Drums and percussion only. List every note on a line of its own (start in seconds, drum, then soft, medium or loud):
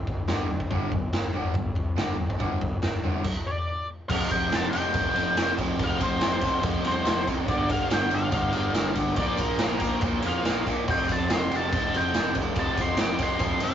0.07 kick medium
0.07 floor tom medium
0.28 snare loud
0.28 floor tom medium
0.50 floor tom medium
0.60 kick medium
0.71 kick loud
0.71 floor tom medium
0.92 kick medium
0.92 floor tom medium
1.13 snare loud
1.13 floor tom medium
1.34 floor tom medium
1.54 kick loud
1.54 floor tom medium
1.75 kick medium
1.75 floor tom medium
1.97 snare loud
1.97 floor tom medium
2.20 floor tom medium
2.30 kick medium
2.40 kick loud
2.40 floor tom medium
2.61 kick medium
2.61 floor tom medium
2.82 snare loud
2.82 floor tom medium
3.04 floor tom medium
3.24 kick loud
3.24 crash medium
4.10 kick loud
4.10 crash loud
4.31 kick medium
4.31 ride medium
4.31 tambourine medium
4.52 snare loud
4.52 ride loud
4.52 tambourine medium
4.73 ride medium
4.73 tambourine medium
4.94 kick loud
4.94 ride loud
4.94 tambourine medium
5.15 ride medium
5.37 snare loud
5.37 ride loud
5.37 tambourine medium
5.58 kick medium
5.58 ride medium
5.58 tambourine medium
5.79 kick loud
5.79 ride loud
6.00 kick medium
6.00 ride medium
6.00 tambourine medium
6.21 snare loud
6.21 ride loud
6.21 tambourine medium
6.41 kick medium
6.41 ride medium
6.41 tambourine medium
6.63 kick loud
6.63 ride loud
6.63 tambourine medium
6.85 ride medium
7.05 snare loud
7.05 ride medium
7.05 tambourine loud
7.27 kick medium
7.27 ride medium
7.27 tambourine medium
7.48 kick loud
7.48 ride loud
7.69 kick medium
7.69 ride medium
7.90 snare loud
7.90 ride medium
7.90 tambourine medium
8.10 ride medium
8.10 tambourine medium
8.31 kick loud
8.31 ride loud
8.31 tambourine medium
8.53 ride medium
8.74 snare loud
8.74 ride loud
8.74 tambourine medium
8.95 kick medium
8.95 ride medium
8.95 tambourine medium
9.16 kick loud
9.16 ride loud
9.16 tambourine soft
9.37 kick medium
9.37 ride medium
9.37 tambourine medium
9.58 snare loud
9.58 ride loud
9.58 tambourine medium
9.80 kick medium
9.80 ride medium
9.80 tambourine medium
10.01 kick loud
10.01 ride loud
10.01 tambourine medium
10.22 ride medium
10.22 tambourine soft
10.45 snare loud
10.45 ride loud
10.45 tambourine medium
10.67 kick medium
10.67 ride medium
10.67 tambourine medium
10.88 kick loud
10.88 crash loud
11.09 kick medium
11.09 ride medium
11.09 tambourine medium
11.30 snare loud
11.30 ride medium
11.30 tambourine medium
11.51 ride medium
11.51 tambourine medium
11.72 kick loud
11.72 ride loud
11.72 tambourine medium
11.94 ride medium
12.14 snare loud
12.14 ride loud
12.14 tambourine medium
12.35 kick medium
12.35 ride medium
12.35 tambourine medium
12.56 kick loud
12.56 ride medium
12.77 kick medium
12.77 ride medium
12.77 tambourine medium
12.97 snare loud
12.97 ride loud
12.97 tambourine medium
13.19 kick medium
13.19 ride medium
13.19 tambourine medium
13.39 kick loud
13.39 ride loud
13.39 tambourine medium
13.60 ride medium